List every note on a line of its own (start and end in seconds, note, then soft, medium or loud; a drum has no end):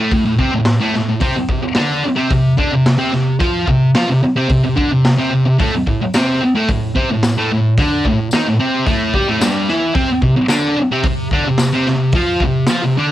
0.00 0.11 A2 medium
0.00 0.12 A3 loud
0.12 0.24 A2 medium
0.12 kick loud
0.12 open hi-hat soft
0.26 0.38 A2 medium
0.39 0.52 C3 medium
0.39 0.53 C4 loud
0.39 kick medium
0.52 0.75 A2 medium
0.65 snare loud
0.65 open hi-hat soft
0.80 0.94 A2 medium
0.80 0.94 A3 loud
0.94 1.07 A2 medium
0.94 snare soft
1.08 1.20 A2 medium
1.20 1.34 C3 loud
1.20 1.35 C4 medium
1.20 kick loud
1.20 open hi-hat medium
1.36 muted distorted electric guitar stroke medium
1.49 1.61 C3 medium
1.49 kick medium
1.63 muted distorted electric guitar stroke medium
1.75 2.03 D3 loud
1.75 2.04 D4 loud
1.75 snare loud
1.75 open hi-hat medium
2.05 muted distorted electric guitar stroke soft
2.16 2.28 C3 medium
2.16 2.30 C4 loud
2.29 2.52 C3 medium
2.29 kick loud
2.29 open hi-hat medium
2.57 2.71 D3 medium
2.57 2.72 D4 medium
2.57 kick medium
2.71 2.94 C3 medium
2.86 snare loud
2.86 open hi-hat medium
2.98 3.11 C3 medium
2.98 3.12 C4 loud
3.13 3.35 C3 medium
3.13 snare soft
3.39 3.67 F3 medium
3.39 3.67 F4 loud
3.39 kick loud
3.39 open hi-hat medium
3.67 3.90 C3 medium
3.67 kick medium
3.95 4.08 F3 loud
3.95 4.08 F4 loud
3.95 snare loud
3.95 open hi-hat medium
4.08 4.21 C3 medium
4.23 muted distorted electric guitar stroke medium
4.36 4.48 C3 loud
4.36 4.50 C4 medium
4.49 4.62 C3 medium
4.49 kick loud
4.49 open hi-hat medium
4.64 4.75 C3 medium
4.76 4.90 D3 medium
4.76 4.90 D4 loud
4.76 kick medium
4.90 5.13 C3 medium
5.05 snare loud
5.05 open hi-hat medium
5.17 5.29 C3 loud
5.17 5.31 C4 loud
5.30 5.44 C3 medium
5.45 5.58 C3 medium
5.58 5.71 A2 medium
5.58 5.72 A3 loud
5.58 kick loud
5.58 open hi-hat medium
5.73 muted distorted electric guitar stroke medium
5.87 6.00 A2 medium
5.87 kick medium
6.02 muted distorted electric guitar stroke medium
6.14 6.41 C3 medium
6.14 6.41 C4 loud
6.14 snare loud
6.14 open hi-hat soft
6.14 tambourine medium
6.42 muted distorted electric guitar stroke medium
6.55 6.68 A2 medium
6.55 6.69 A3 loud
6.68 6.91 A2 medium
6.68 kick medium
6.68 open hi-hat medium
6.95 7.09 C3 medium
6.95 7.09 C4 loud
6.95 kick medium
7.11 7.32 A2 medium
7.23 snare loud
7.23 open hi-hat medium
7.23 tambourine medium
7.37 7.50 A2 medium
7.37 7.51 A3 loud
7.51 7.73 A2 medium
7.78 8.05 D3 medium
7.78 8.05 D4 loud
7.78 kick loud
7.78 open hi-hat medium
8.05 8.28 A2 medium
8.05 kick medium
8.31 8.46 D#3 medium
8.31 8.46 D#4 loud
8.31 snare loud
8.31 open hi-hat soft
8.31 tambourine medium
8.47 8.59 A2 medium
8.59 8.86 C3 medium
8.59 8.87 C4 medium
8.86 9.13 A2 medium
8.86 9.14 A3 loud
8.86 kick loud
8.86 open hi-hat medium
9.14 9.27 G3 medium
9.14 9.28 G4 loud
9.14 kick medium
9.28 9.41 A2 medium
9.28 9.41 A3 medium
9.40 9.68 G2 medium
9.40 9.68 G3 medium
9.40 snare loud
9.40 open hi-hat soft
9.40 tambourine loud
9.68 9.93 E3 medium
9.68 9.95 E4 medium
9.68 snare soft
9.94 10.08 C3 medium
9.94 10.09 C4 loud
9.94 kick loud
9.94 open hi-hat medium
10.09 muted distorted electric guitar stroke medium
10.22 10.35 C3 medium
10.22 kick medium
10.36 muted distorted electric guitar stroke medium
10.48 10.76 D3 loud
10.48 10.77 D4 loud
10.48 snare loud
10.48 open hi-hat soft
10.48 tambourine loud
10.78 muted distorted electric guitar stroke medium
10.92 11.04 C3 medium
10.92 11.05 C4 loud
11.03 11.27 C3 medium
11.03 kick loud
11.03 open hi-hat medium
11.31 11.45 D3 medium
11.31 11.46 D4 medium
11.31 kick medium
11.45 11.68 C3 medium
11.58 snare loud
11.58 open hi-hat medium
11.58 tambourine loud
11.73 11.86 C3 medium
11.73 11.87 C4 loud
11.86 12.10 C3 medium
11.86 snare soft
12.12 12.41 F3 medium
12.12 12.42 F4 loud
12.12 kick loud
12.12 open hi-hat medium
12.40 12.64 C3 medium
12.40 kick medium
12.67 12.82 F3 medium
12.67 12.83 F4 loud
12.67 snare loud
12.67 open hi-hat medium
12.67 tambourine loud
12.83 12.97 C3 medium
12.97 13.12 D3 medium
12.97 13.12 D4 medium